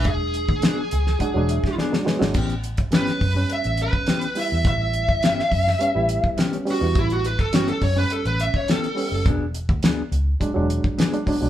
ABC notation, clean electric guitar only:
X:1
M:4/4
L:1/8
Q:1/4=104
K:A
V:1 name="Clean electric guitar"
z2 [F,B,DG] z3 [F,B,DG] [B,DG] | [E,B,C=G] z [E,B,CG] z3 [E,B,CG] z | z2 [E,B,C=G] z3 [E,B,CG] [B,CG] | z2 [E,B,C=G] z3 [E,B,CG] [B,CG] |
[F,B,DG] z [F,B,DG] z3 [F,B,DG] [B,DG] |]